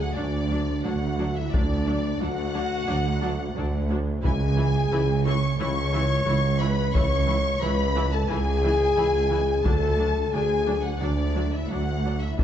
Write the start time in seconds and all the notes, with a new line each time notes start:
Already playing: D2
0.00 F#4 F#5
0.17 D2 F#3 D4 D5
0.51 F#3 D4
0.85 D2 F#3 D4 F#4 F#5
1.19 F#3 D4
1.36 E4 E5
1.53 D2 F#3 D4 D5, taiko
1.88 F#3 D4
2.21 D2 F#3 D4 F#4 F#5
2.54 F#3 D4
2.88 D2 F#3 D4
3.22 F#3 D4
3.56 D2 F#3 D4
3.90 F#3 D4
4.23 C#2 C#3 E3 E4 G#4 G#5, taiko
4.57 E3 E4
4.92 C#2 E3 E4
5.25 E3 E4 C#5 C#6
5.59 C#2 E3 E4 C#5 C#6
5.94 E3 E4
6.27 C#2 E3 E4
6.58 E3 E4 B4 B5
6.93 C#2 E3 E4 C#5 C#6, taiko
7.28 E3 E4
7.61 C#2 E3 E4 B4 B5
7.96 E3 E4
8.12 A4 A5
8.28 C#2 E3 E4 G#4 G#5
8.64 E3 E4
8.97 C#2 E3 E4
9.30 E3 E4
9.65 D2 F#3 D4 A4 A5, taiko
9.99 F#3 D4
10.32 D2 F#3 D4 G#4 G#5
10.67 F#3 D4
10.84 F#4 F#5
11.00 D2 F#3 D4 D5
11.36 F#3 D4
11.52 E4 E5
11.69 D2 F#3 D4 F#4 F#5
12.05 F#3 D4
12.21 E4 E5
12.38 D2 F#3 D4 E4 E5, taiko